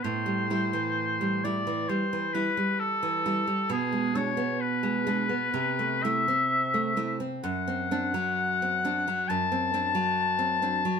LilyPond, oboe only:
\new Staff \with { instrumentName = "Oboe" } { \time 4/4 \key a \dorian \tempo 4 = 66 c''4. d''8 c''8 b'8 a'4 | gis'8 cis''8 b'4. e''4 r8 | fis''2 a''2 | }